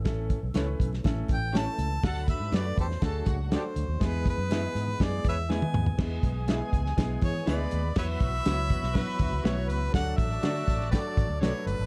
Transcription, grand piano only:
X:1
M:4/4
L:1/8
Q:1/4=122
K:Emix
V:1 name="Grand piano"
[A,CEA] z [A,CEB] z [A,CEA] z [A,CEA] z | [A,DFA] z [A,DFB] z [A,DFG] z [A,DFA] z | [G,B,EG] z [G,B,EG] z [G,B,EG] z [G,B,EB] z | [G,B,EG] z [G,B,EG] z [G,B,EG] z [G,B,EG] z |
[F,B,EFB] z [F,B,EFc] z [F,B,EFB] z [F,B,EFB] z | [F,A,DFA] z [F,A,DFA] z [F,A,DFA] z [F,A,DFB] z |]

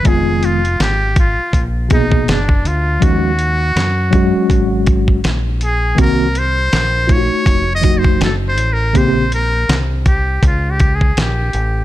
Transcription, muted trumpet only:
X:1
M:4/4
L:1/8
Q:"Swing 16ths" 1/4=81
K:Ebmix
V:1 name="Muted trumpet"
A F G F z E =D F | _G4- G z2 A | B c2 d- (3d e c (3=A c B | c B z G (3F G A G2 |]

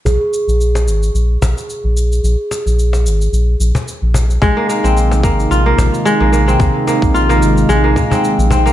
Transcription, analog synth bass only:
X:1
M:4/4
L:1/16
Q:"Swing 16ths" 1/4=110
K:Abmix
V:1 name="Analog synth bass" clef=bass
B,,, z2 B,,,3 A,,,2 B,,,2 B,,, z2 B,,,3 | B,,, z2 B,,,3 A,,,2 B,,,2 B,,, z2 B,,,3 | B,,, z2 B,,,3 A,,,2 B,,,2 B,,, z2 B,,,3 | B,,, z2 B,,,3 A,,,2 B,,,2 B,, z2 B,,,3 |]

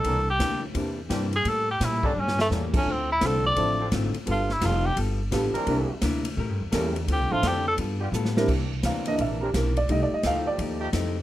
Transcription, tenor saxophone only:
X:1
M:4/4
L:1/8
Q:"Swing" 1/4=171
K:Cmix
V:1 name="Tenor saxophone"
A G2 z4 _A | A G E D ^C A, z C | C E A d3 z2 | F E F G z4 |
z8 | G F G A z4 | z8 | z8 |]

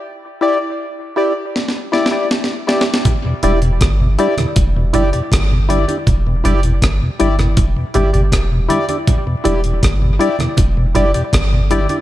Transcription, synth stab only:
X:1
M:4/4
L:1/16
Q:1/4=80
K:Em
V:1 name="Synth stab"
z2 [EGd] z3 [EGd] z3 [EGd] [EGd] z2 [EGd] z | z2 [EGd] z3 [EGd] z3 [EGd] [Gd] z2 [EGd] [Gd] | z2 [EGd] z3 [EGd] z3 [EGd] [Gd] z2 [EGd] [Gd] | z2 [EGd] z3 [EGd] z3 [EGd] [Gd] z2 [EGd] [Gd] |]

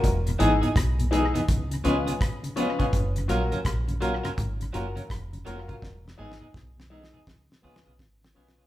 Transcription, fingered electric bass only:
X:1
M:4/4
L:1/16
Q:"Swing 16ths" 1/4=83
K:F#
V:1 name="Fingered electric bass" clef=bass
=E,,,2 G,,, z B,,,3 z C,,2 C,, z4 z | F,,,2 A,,, z A,,,3 z G,,,2 F,,, z E,,,2 E,,, z | =E,,,2 G,,, z B,,,3 z C,, z C,, B,,, G,,,2 B,,,2 |]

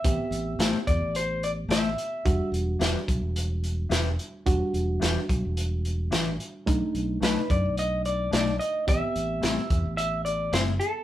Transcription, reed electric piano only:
X:1
M:4/4
L:1/8
Q:"Swing 16ths" 1/4=109
K:Em
V:1 name="Reed electric piano"
[B,CG]8 | [G,DF]8 | [G,DF]8 | [A,D^D]8 |
[B,CG]8 |]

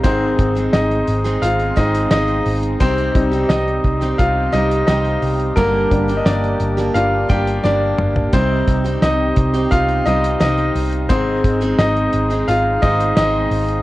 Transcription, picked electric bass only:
X:1
M:4/4
L:1/8
Q:1/4=87
K:Cm
V:1 name="Picked electric bass" clef=bass
A,,, A,,, A,,, A,,, A,,, A,,, A,,, A,,, | C,, C,, C,, C,, C,, C,, C,, C,, | G,,, G,,, G,,, G,,, G,,, G,,, G,,, G,,, | C,, C,, C,, C,, C,, C,, C,, C,, |
A,,, A,,, A,,, A,,, A,,, A,,, A,,, A,,, |]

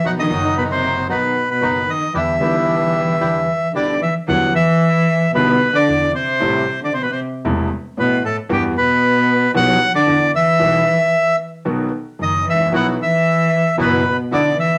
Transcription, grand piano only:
X:1
M:4/4
L:1/16
Q:1/4=114
K:Em
V:1 name="Grand piano" clef=bass
[B,,,B,,^D,F,B,F]2 [F,,,F,,D,F,^DF]6 [B,,,B,,D,F,B,F]2 z2 [F,,,F,,D,F,B,F]2 z2 | [E,,D,E,G,B,E]2 [B,,,B,,D,G,B,E]6 [E,,D,E,G,B,E]2 z2 [B,,,B,,D,G,B,E]2 z2 | [E,,D,E,G,B,E]2 z6 [B,,,B,,D,G,B,E]2 z2 [E,,E,]2 z2 | [A,,,A,,C,G,A,E]2 z6 [E,,,E,,C,G,A,E]2 z2 [A,,,A,,]2 z2 |
[E,,E,G,B,F]2 z6 [B,,,B,,E,G,B,F]2 z2 [E,,E,]2 z2 | [B,,,B,,E,G,B,G]2 z6 [B,,,B,,^D,F,B,F]2 z2 [F,,,F,,]2 z/2 ^G,,,/2 A,,,/2 ^A,,,/2 | [B,,,B,,E,F,B,F]2 z6 [F,,,F,,E,F,B,F]2 z2 [B,,,B,,]2 z2 |]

